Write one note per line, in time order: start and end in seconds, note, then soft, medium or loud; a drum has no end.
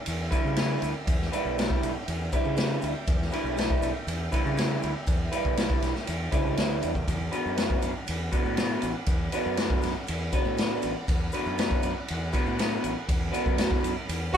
0.00 7.03 E5 medium
0.00 7.03 G5 medium
0.00 14.37 D6 medium
0.06 0.28 E2 medium
0.06 ride loud
0.06 maracas medium
0.31 0.55 G3 medium
0.31 0.56 D4 medium
0.31 0.56 E4 medium
0.31 0.56 B4 medium
0.31 kick medium
0.31 ride medium
0.31 maracas medium
0.45 0.75 C#3 medium
0.45 maracas soft
0.56 0.89 G3 medium
0.56 0.90 D4 medium
0.56 0.90 E4 medium
0.56 0.90 B4 medium
0.56 snare loud
0.56 ride loud
0.56 maracas medium
0.82 0.92 D2 medium
0.82 ride medium
0.82 maracas medium
1.07 1.28 E2 loud
1.07 kick loud
1.07 ride loud
1.07 maracas medium
1.21 snare soft
1.32 1.56 G3 medium
1.32 1.57 D4 medium
1.32 1.57 E4 medium
1.32 1.57 B4 medium
1.32 ride medium
1.32 maracas loud
1.45 1.76 B1 medium
1.45 maracas soft
1.57 1.90 G3 medium
1.57 1.90 D4 medium
1.57 1.90 E4 medium
1.57 1.90 B4 medium
1.57 snare loud
1.57 ride medium
1.57 maracas medium
1.70 kick medium
1.83 1.93 B1 medium
1.83 ride medium
1.83 maracas medium
2.08 2.28 E2 loud
2.08 ride medium
2.08 maracas medium
2.32 2.56 G3 medium
2.32 2.56 D4 medium
2.32 2.56 E4 medium
2.32 2.57 B4 medium
2.32 kick medium
2.32 ride medium
2.32 maracas medium
2.45 2.76 C#3 medium
2.45 maracas soft
2.56 2.90 G3 medium
2.56 2.90 D4 medium
2.56 2.90 E4 medium
2.56 2.90 B4 medium
2.56 snare loud
2.56 ride medium
2.56 maracas medium
2.82 2.93 D2 medium
2.82 ride medium
2.82 maracas medium
3.07 3.28 E2 loud
3.07 kick loud
3.07 ride medium
3.07 maracas medium
3.22 snare soft
3.31 3.55 G3 medium
3.31 3.56 D4 medium
3.31 3.56 E4 medium
3.31 3.57 B4 medium
3.31 ride medium
3.31 maracas medium
3.44 3.75 B1 medium
3.44 maracas soft
3.56 3.89 G3 medium
3.56 3.90 D4 medium
3.56 3.90 E4 medium
3.56 3.90 B4 medium
3.56 snare loud
3.56 ride medium
3.56 maracas medium
3.70 kick medium
3.82 3.92 B1 medium
3.82 ride medium
3.82 maracas medium
4.07 4.28 E2 medium
4.07 ride medium
4.07 maracas medium
4.32 4.55 G3 medium
4.32 4.56 D4 medium
4.32 4.56 E4 medium
4.32 4.56 B4 loud
4.32 kick medium
4.32 ride medium
4.32 maracas loud
4.45 4.76 C#3 medium
4.45 maracas soft
4.56 4.89 G3 medium
4.56 4.90 D4 medium
4.56 4.90 E4 medium
4.56 4.90 B4 medium
4.56 snare loud
4.56 ride loud
4.56 maracas medium
4.82 4.93 D2 medium
4.82 ride medium
4.82 maracas loud
5.06 5.28 E2 loud
5.06 kick loud
5.06 ride medium
5.06 maracas medium
5.32 5.56 G3 medium
5.32 5.57 D4 medium
5.32 5.57 E4 medium
5.32 5.57 B4 loud
5.32 ride medium
5.32 maracas loud
5.45 5.76 B1 medium
5.45 kick medium
5.45 maracas soft
5.57 5.90 G3 medium
5.57 5.90 D4 medium
5.57 5.90 E4 medium
5.57 5.90 B4 medium
5.57 snare loud
5.57 ride loud
5.57 maracas medium
5.70 kick medium
5.82 5.93 B1 medium
5.82 snare soft
5.82 ride medium
5.82 maracas loud
5.95 snare soft
5.95 maracas soft
6.07 6.28 E2 medium
6.07 ride medium
6.07 maracas medium
6.32 6.55 C#2 medium
6.32 6.56 G3 medium
6.32 6.57 D4 medium
6.32 6.57 E4 medium
6.32 6.57 B4 loud
6.32 kick medium
6.32 ride medium
6.32 maracas loud
6.46 maracas soft
6.57 6.80 D2 medium
6.57 6.90 G3 medium
6.57 6.90 D4 medium
6.57 6.90 E4 medium
6.57 6.90 B4 medium
6.57 snare loud
6.57 ride medium
6.57 maracas medium
6.82 7.06 E2 medium
6.82 ride medium
6.82 maracas loud
6.95 kick medium
6.95 maracas soft
7.07 7.28 E2 loud
7.07 14.37 F#5 medium
7.07 14.37 B5 medium
7.07 kick loud
7.07 ride medium
7.07 maracas medium
7.32 7.56 B3 medium
7.32 7.56 D4 medium
7.32 7.56 F#4 loud
7.32 7.56 B4 medium
7.32 ride medium
7.32 maracas medium
7.46 7.76 F#2 medium
7.46 maracas soft
7.57 7.90 B3 medium
7.57 7.90 D4 medium
7.57 7.90 F#4 medium
7.57 7.90 B4 medium
7.57 snare loud
7.57 ride medium
7.57 maracas medium
7.70 kick medium
7.82 7.93 F#2 medium
7.82 ride medium
7.82 maracas medium
8.07 8.29 E2 medium
8.07 ride loud
8.07 maracas medium
8.32 8.55 B3 medium
8.32 8.56 D4 medium
8.32 8.56 F#4 medium
8.32 8.56 B4 medium
8.32 kick medium
8.32 ride medium
8.32 maracas loud
8.45 8.76 A2 medium
8.45 maracas soft
8.56 8.89 B3 medium
8.56 8.90 D4 medium
8.56 8.90 F#4 medium
8.56 8.90 B4 medium
8.56 snare loud
8.56 ride medium
8.56 maracas medium
8.82 8.93 A1 medium
8.82 ride medium
8.82 maracas medium
9.06 9.28 E2 loud
9.06 kick loud
9.06 ride medium
9.06 maracas medium
9.32 9.56 B3 medium
9.32 9.57 D4 medium
9.32 9.57 F#4 medium
9.32 9.58 B4 loud
9.32 ride medium
9.32 maracas loud
9.46 9.76 F#2 medium
9.46 maracas soft
9.57 9.90 B3 medium
9.57 9.90 D4 medium
9.57 9.90 F#4 medium
9.57 9.91 B4 medium
9.57 snare loud
9.57 ride loud
9.57 maracas medium
9.70 kick medium
9.82 9.94 F#2 medium
9.82 snare soft
9.82 ride medium
9.82 maracas medium
10.07 10.29 E2 medium
10.07 ride loud
10.07 maracas medium
10.32 10.57 B3 medium
10.32 10.57 D4 medium
10.32 10.58 F#4 medium
10.32 10.58 B4 medium
10.32 kick medium
10.32 ride medium
10.32 maracas loud
10.45 10.76 A2 medium
10.45 maracas soft
10.57 10.91 B3 medium
10.57 10.91 D4 medium
10.57 10.91 F#4 medium
10.57 10.91 B4 medium
10.57 snare loud
10.57 ride medium
10.57 maracas medium
10.82 10.94 A1 medium
10.82 ride medium
10.82 maracas loud
11.08 11.29 E2 loud
11.08 kick loud
11.08 ride medium
11.08 maracas medium
11.32 11.56 B3 medium
11.32 11.57 D4 medium
11.32 11.58 F#4 medium
11.32 11.58 B4 loud
11.32 ride medium
11.32 maracas loud
11.46 11.77 F#2 medium
11.46 maracas soft
11.58 11.90 B3 medium
11.58 11.91 D4 medium
11.58 11.91 F#4 medium
11.58 11.91 B4 medium
11.58 snare loud
11.58 ride medium
11.58 maracas medium
11.71 kick medium
11.83 11.94 F#2 medium
11.83 ride medium
11.83 maracas medium
12.08 12.30 E2 medium
12.08 ride medium
12.08 maracas medium
12.33 12.57 B3 medium
12.33 12.58 D4 medium
12.33 12.58 F#4 medium
12.33 12.58 B4 medium
12.33 kick medium
12.33 ride medium
12.33 maracas loud
12.46 12.78 A2 medium
12.46 maracas soft
12.58 12.91 B3 medium
12.58 12.91 D4 medium
12.58 12.91 F#4 medium
12.58 12.92 B4 medium
12.58 snare loud
12.58 ride medium
12.58 maracas medium
12.84 12.94 A1 medium
12.84 ride medium
12.84 maracas medium
13.09 13.29 E2 loud
13.09 kick loud
13.09 ride loud
13.09 maracas medium
13.32 13.56 B3 medium
13.32 13.56 D4 medium
13.32 13.57 F#4 medium
13.32 13.57 B4 loud
13.32 ride medium
13.32 maracas medium
13.46 13.77 F#2 medium
13.46 kick medium
13.46 maracas soft
13.57 13.90 B3 medium
13.57 13.91 D4 medium
13.57 13.91 F#4 medium
13.57 13.91 B4 medium
13.57 snare loud
13.57 ride loud
13.57 maracas medium
13.71 kick medium
13.84 13.94 F#2 medium
13.84 ride medium
13.84 maracas medium
13.97 maracas soft
14.09 14.30 E2 medium
14.09 ride loud
14.09 maracas medium
14.33 14.37 D4 medium
14.33 14.37 F#4 medium
14.33 14.37 B4 medium
14.33 kick medium